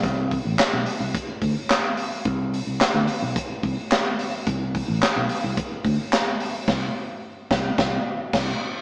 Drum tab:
CC |--------|--------|--------|x-----x-|
HH |xoxoxoxo|xoxoxoxo|xoxoxoxo|--------|
CP |--x---x-|--x---x-|--x---x-|--------|
SD |--o---o-|--o---o-|--o---o-|o--oo-o-|
BD |oo--oo--|o---oo--|oo--oo--|o--oo-o-|